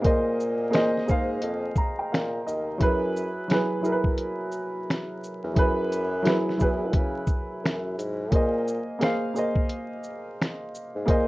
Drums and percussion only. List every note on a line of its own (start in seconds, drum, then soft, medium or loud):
0.04 kick loud
0.04 closed hi-hat medium
0.40 shaker soft
0.73 finger snap medium
0.73 snare loud
0.73 closed hi-hat medium
0.97 snare soft
1.08 kick medium
1.08 shaker soft
1.42 closed hi-hat medium
1.76 kick medium
1.76 shaker soft
2.14 finger snap medium
2.14 snare loud
2.14 closed hi-hat medium
2.48 shaker soft
2.81 kick loud
2.81 closed hi-hat medium
3.17 shaker soft
3.50 finger snap medium
3.50 snare loud
3.50 closed hi-hat medium
3.84 shaker soft
4.04 kick medium
4.18 closed hi-hat medium
4.52 shaker soft
4.90 finger snap medium
4.90 snare loud
4.90 closed hi-hat medium
5.24 shaker soft
5.56 kick loud
5.56 closed hi-hat medium
5.92 closed hi-hat soft
5.92 shaker soft
6.25 finger snap loud
6.25 snare loud
6.25 closed hi-hat medium
6.49 snare soft
6.60 kick medium
6.60 shaker soft
6.93 kick loud
6.93 closed hi-hat medium
7.27 kick medium
7.27 shaker soft
7.65 finger snap medium
7.65 snare loud
7.65 closed hi-hat medium
7.99 closed hi-hat soft
7.99 shaker soft
8.32 kick loud
8.32 closed hi-hat medium
8.68 shaker soft
9.01 finger snap medium
9.01 snare loud
9.01 closed hi-hat medium
9.36 shaker soft
9.55 kick medium
9.69 closed hi-hat medium
10.03 shaker soft
10.42 finger snap medium
10.42 snare loud
10.42 closed hi-hat medium
10.75 shaker soft
11.08 kick loud
11.08 closed hi-hat medium